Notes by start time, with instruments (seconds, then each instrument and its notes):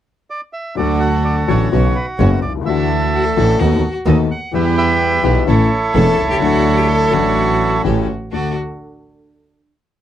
0.30 bandoneon D5
0.53 bandoneon E5
0.75 double bass D2, grand piano D2 D3 F#3 A3 F#4, string section A3 D4 F#4, bandoneon F#4 A4 D5
1.00 bandoneon F#5
1.25 bandoneon D5
1.48 grand piano A1 A2 D3 F#3 A3 F#4, double bass A1, string section A3 D4 F#4, bandoneon F#4 C#5
1.72 double bass B1, grand piano B1 B2 C#3 F#3 B3 F#4, string section B3 C#4 F#4
1.95 bandoneon B4
2.18 grand piano F#1 F#2 C#3 F#3 B3 F#4, double bass F#1, string section B3 C#4 F#4, bandoneon C#5
2.42 double bass C2, bandoneon D5
2.49 grand piano B1
2.55 grand piano C2
2.61 grand piano C#2 E3
2.66 double bass D2, grand piano D2 D3 A3 D4 F#4, string section D4 E4 F#4, bandoneon A4 E5
3.13 cello F#4
3.24 cello A4
3.36 double bass A1, grand piano A1 A2 E3 A3 D4 F#4, string section D4 E4 F#4, cello A4
3.59 double bass D#2, grand piano D#2 D#3 A3 B3 F#4, string section B3 D#4 A4, cello F#4
4.06 double bass D#2, grand piano D#2 D#3 A3 B3 F#4, string section B3 D#4 A4, bandoneon D#5
4.31 bandoneon F#5
4.53 double bass E2, grand piano E2 E3 G3 B3 G4, string section B3 E4 G4, bandoneon G4 B4 E5
4.78 bandoneon B4 E5 G5
5.23 double bass B1, grand piano B1 B2 E3 G3 B3 G4, string section B3 E4 G4, bandoneon E5
5.47 double bass A1, grand piano A1 A2 E3 A3 C#4 A4, string section C#4 E4 A4, bandoneon E4 A4 C#5
5.93 double bass E1, grand piano E1 E2 E3 A3 C#4 A4, string section C#4 E4 A4, cello A4
6.19 double bass C2
6.24 grand piano B1
6.30 grand piano C2, cello G4
6.36 grand piano C#2 F#3
6.41 grand piano D2 D3 A3 D4 A4, double bass D2, string section D4 F#4 A4, cello F#4
6.78 cello G4
6.88 cello A4
7.11 double bass A1, grand piano A1 A2 F#3 A3 D4 A4, string section D4 F#4 A4, cello F#4
7.84 grand piano A1 A2 E3 A3 C#4 G4, double bass A1, string section C#4 G4 A4
8.32 grand piano D2 A3 D4 F#4, double bass D2, string section D4 F#4 A4, cello F#4, bandoneon D5